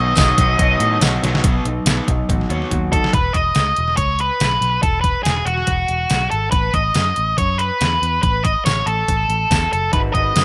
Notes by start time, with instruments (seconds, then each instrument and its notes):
Already playing: picked electric bass B1, overdriven electric guitar B2 D#3 F#3 B3 D#4, clean electric guitar B3 D#4 F#4 C#5, lead electric guitar D#5, glockenspiel D#6
0.15 picked electric bass B1, overdriven electric guitar B2 D#3 F#3 B3, clean electric guitar B3 D#4, kick, closed hi-hat, tambourine
0.17 overdriven electric guitar D#4, clean electric guitar F#4 C#5, snare, tambourine
0.38 picked electric bass B1, overdriven electric guitar B2 D#3 F#3 B3 D#4, clean electric guitar B3 D#4 F#4 C#5, kick, closed hi-hat
0.59 picked electric bass B1, overdriven electric guitar B2 D#3 F#3 B3 D#4, clean electric guitar B3 D#4 F#4 C#5, kick, closed hi-hat
0.80 picked electric bass A2, closed hi-hat
1.01 picked electric bass B1, overdriven electric guitar B2 D#3 F#3 B3 D#4, clean electric guitar B3 D#4 F#4 C#5, snare, closed hi-hat, tambourine
1.23 picked electric bass B1, overdriven electric guitar B2 D#3 F#3 B3 D#4, clean electric guitar B3 D#4 F#4 C#5, snare, closed hi-hat
1.35 snare
1.44 picked electric bass B1, overdriven electric guitar B2 F#3 B3, clean electric guitar B3, kick, closed hi-hat
1.65 picked electric bass B1, overdriven electric guitar B2 F#3, clean electric guitar D#4, closed hi-hat
1.86 picked electric bass B1, overdriven electric guitar B2 F#3 B3, clean electric guitar B3, snare, closed hi-hat, tambourine
2.07 picked electric bass B1, overdriven electric guitar B2 F#3, clean electric guitar D#4, kick, closed hi-hat
2.29 picked electric bass A1, overdriven electric guitar B2 F#3, clean electric guitar F#4, kick, closed hi-hat
2.41 snare
2.49 picked electric bass D#2, overdriven electric guitar B2 F#3 B3, clean electric guitar C#5, closed hi-hat
2.62 snare
2.71 picked electric bass D#2, overdriven electric guitar B2 F#3, clean electric guitar F#4, kick, closed hi-hat
2.92 overdriven electric guitar B2 F#3, clean electric guitar D#4, lead electric guitar A4, kick, closed hi-hat
3.04 snare
3.13 picked electric bass E1, lead electric guitar B4, kick, closed hi-hat
3.33 picked electric bass E1, lead electric guitar D#5, kick, closed hi-hat
3.55 picked electric bass C#2, snare, closed hi-hat, tambourine
3.76 picked electric bass E1, closed hi-hat
3.88 snare
3.97 picked electric bass C#2, lead electric guitar C#5, kick, closed hi-hat
4.19 lead electric guitar B4, closed hi-hat
4.40 picked electric bass B1, snare, closed hi-hat, tambourine
4.61 picked electric bass B1, snare, closed hi-hat
4.83 picked electric bass E1, lead electric guitar A4, kick, closed hi-hat
5.01 lead electric guitar B4, kick, closed hi-hat
5.23 picked electric bass E1, lead electric guitar G#4, snare, closed hi-hat, tambourine
5.45 picked electric bass E1, lead electric guitar F#4, closed hi-hat
5.57 snare
5.67 picked electric bass E1, kick, closed hi-hat
5.88 picked electric bass E1, closed hi-hat
6.10 picked electric bass B1, snare, closed hi-hat, tambourine
6.30 picked electric bass G#1, lead electric guitar A4, closed hi-hat
6.51 picked electric bass A1, lead electric guitar B4, kick, closed hi-hat
6.74 picked electric bass A1, lead electric guitar D#5, kick, closed hi-hat
6.95 picked electric bass F#2, snare, closed hi-hat, tambourine
7.16 picked electric bass A1, closed hi-hat
7.38 picked electric bass F#2, lead electric guitar C#5, kick, closed hi-hat
7.58 lead electric guitar B4, closed hi-hat
7.81 picked electric bass E2, snare, closed hi-hat, tambourine
8.02 picked electric bass E2, closed hi-hat
8.23 picked electric bass A1, lead electric guitar B4, kick, closed hi-hat
8.44 lead electric guitar D#5, kick, closed hi-hat
8.65 picked electric bass A1, lead electric guitar C#5, snare, closed hi-hat, tambourine
8.86 picked electric bass A1, lead electric guitar A4, closed hi-hat
9.08 picked electric bass A1, kick, closed hi-hat
9.29 picked electric bass A1, closed hi-hat
9.51 picked electric bass E2, kick, snare, closed hi-hat, tambourine
9.72 picked electric bass F#1, lead electric guitar A4, closed hi-hat
9.92 picked electric bass G#1, clean electric guitar G#3 D#4 F#4 B4, lead electric guitar B4, kick, closed hi-hat
10.13 picked electric bass G#1, clean electric guitar D#4 F#4 B4, lead electric guitar D#5, kick, closed hi-hat
10.34 picked electric bass F#2, clean electric guitar G#3 D#4 F#4 B4, snare, closed hi-hat, tambourine